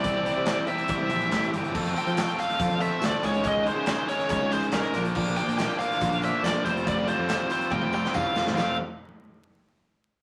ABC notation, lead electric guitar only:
X:1
M:4/4
L:1/16
Q:1/4=140
K:Cmix
V:1 name="Lead electric guitar"
d6 e8 z2 | z2 g2 g2 f4 e2 d2 _d2 | _e2 c4 _d2 d2 c2 B3 z | z2 g2 g2 f4 e2 d2 c2 |
d2 c4 c2 g2 g2 f3 z | f2 z12 z2 |]